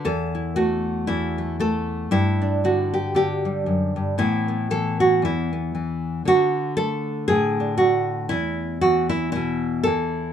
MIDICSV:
0, 0, Header, 1, 2, 480
1, 0, Start_track
1, 0, Tempo, 516796
1, 47, Time_signature, 4, 2, 24, 8
1, 9594, End_track
2, 0, Start_track
2, 0, Title_t, "Nylon-string guitar"
2, 0, Program_c, 0, 24
2, 43, Note_on_c, 0, 40, 79
2, 48, Note_on_c, 0, 69, 96
2, 322, Note_on_c, 0, 64, 51
2, 516, Note_off_c, 0, 69, 0
2, 519, Note_on_c, 0, 66, 94
2, 527, Note_on_c, 0, 57, 54
2, 985, Note_off_c, 0, 64, 0
2, 996, Note_off_c, 0, 40, 0
2, 996, Note_on_c, 0, 64, 87
2, 1007, Note_on_c, 0, 40, 67
2, 1279, Note_off_c, 0, 57, 0
2, 1282, Note_on_c, 0, 57, 42
2, 1479, Note_off_c, 0, 57, 0
2, 1483, Note_off_c, 0, 66, 0
2, 1483, Note_on_c, 0, 57, 62
2, 1490, Note_on_c, 0, 69, 90
2, 1952, Note_off_c, 0, 64, 0
2, 1956, Note_off_c, 0, 40, 0
2, 1960, Note_on_c, 0, 43, 76
2, 1966, Note_on_c, 0, 64, 93
2, 1967, Note_off_c, 0, 69, 0
2, 1988, Note_off_c, 0, 57, 0
2, 2244, Note_on_c, 0, 62, 51
2, 2451, Note_off_c, 0, 62, 0
2, 2453, Note_on_c, 0, 50, 54
2, 2459, Note_on_c, 0, 66, 87
2, 2714, Note_off_c, 0, 64, 0
2, 2727, Note_on_c, 0, 67, 80
2, 2912, Note_off_c, 0, 50, 0
2, 2923, Note_on_c, 0, 50, 60
2, 2924, Note_off_c, 0, 67, 0
2, 2935, Note_on_c, 0, 67, 84
2, 3202, Note_off_c, 0, 66, 0
2, 3206, Note_on_c, 0, 55, 45
2, 3398, Note_off_c, 0, 43, 0
2, 3402, Note_on_c, 0, 42, 49
2, 3673, Note_off_c, 0, 42, 0
2, 3678, Note_on_c, 0, 43, 55
2, 3860, Note_off_c, 0, 50, 0
2, 3881, Note_on_c, 0, 45, 73
2, 3883, Note_off_c, 0, 67, 0
2, 3887, Note_on_c, 0, 64, 93
2, 3888, Note_off_c, 0, 43, 0
2, 3888, Note_on_c, 0, 52, 50
2, 3890, Note_off_c, 0, 55, 0
2, 3894, Note_on_c, 0, 59, 49
2, 4153, Note_off_c, 0, 59, 0
2, 4164, Note_on_c, 0, 59, 51
2, 4359, Note_off_c, 0, 52, 0
2, 4366, Note_off_c, 0, 64, 0
2, 4369, Note_on_c, 0, 52, 64
2, 4373, Note_on_c, 0, 69, 102
2, 4639, Note_off_c, 0, 69, 0
2, 4646, Note_on_c, 0, 66, 83
2, 4845, Note_off_c, 0, 45, 0
2, 4850, Note_on_c, 0, 40, 62
2, 4852, Note_off_c, 0, 66, 0
2, 4875, Note_on_c, 0, 64, 81
2, 5120, Note_off_c, 0, 59, 0
2, 5134, Note_on_c, 0, 59, 46
2, 5326, Note_off_c, 0, 52, 0
2, 5337, Note_on_c, 0, 52, 52
2, 5787, Note_off_c, 0, 52, 0
2, 5791, Note_off_c, 0, 59, 0
2, 5808, Note_on_c, 0, 50, 72
2, 5809, Note_off_c, 0, 40, 0
2, 5822, Note_off_c, 0, 64, 0
2, 5829, Note_on_c, 0, 66, 108
2, 6282, Note_off_c, 0, 66, 0
2, 6285, Note_on_c, 0, 69, 108
2, 6291, Note_on_c, 0, 57, 63
2, 6756, Note_off_c, 0, 69, 0
2, 6759, Note_on_c, 0, 68, 113
2, 6779, Note_on_c, 0, 45, 64
2, 7058, Note_on_c, 0, 62, 44
2, 7218, Note_off_c, 0, 68, 0
2, 7222, Note_on_c, 0, 66, 97
2, 7243, Note_off_c, 0, 57, 0
2, 7246, Note_on_c, 0, 57, 55
2, 7697, Note_off_c, 0, 66, 0
2, 7700, Note_on_c, 0, 64, 99
2, 7714, Note_off_c, 0, 62, 0
2, 7721, Note_on_c, 0, 40, 74
2, 7729, Note_off_c, 0, 50, 0
2, 7734, Note_off_c, 0, 45, 0
2, 8183, Note_off_c, 0, 64, 0
2, 8187, Note_on_c, 0, 66, 91
2, 8197, Note_on_c, 0, 52, 67
2, 8443, Note_off_c, 0, 66, 0
2, 8447, Note_on_c, 0, 64, 89
2, 8645, Note_off_c, 0, 64, 0
2, 8656, Note_on_c, 0, 64, 92
2, 8689, Note_on_c, 0, 47, 67
2, 8717, Note_off_c, 0, 57, 0
2, 9131, Note_off_c, 0, 64, 0
2, 9134, Note_on_c, 0, 69, 100
2, 9159, Note_off_c, 0, 52, 0
2, 9163, Note_on_c, 0, 52, 57
2, 9169, Note_off_c, 0, 47, 0
2, 9594, Note_off_c, 0, 40, 0
2, 9594, Note_off_c, 0, 52, 0
2, 9594, Note_off_c, 0, 69, 0
2, 9594, End_track
0, 0, End_of_file